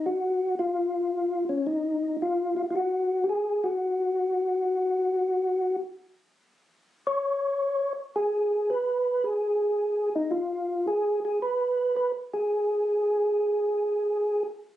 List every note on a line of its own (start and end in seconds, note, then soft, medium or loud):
0.06 0.55 F#4 medium
0.59 1.45 F4 medium
1.49 1.67 C#4 medium
1.67 2.16 D#4 medium
2.22 2.55 F4 medium
2.57 2.62 F4 medium
2.71 2.74 F4 medium
2.76 3.26 F#4 medium
3.24 3.28 G4 medium
3.29 3.66 G#4 loud
3.64 5.76 F#4 medium
7.07 7.93 C#5 medium
8.16 8.71 G#4 medium
8.70 9.25 B4 medium
9.24 10.09 G#4 medium
10.16 10.32 D#4 medium
10.31 10.86 F4 medium
10.88 11.20 G#4 medium
11.25 11.39 G#4 medium
11.42 11.95 B4 loud
11.96 12.12 B4 medium
12.33 14.43 G#4 medium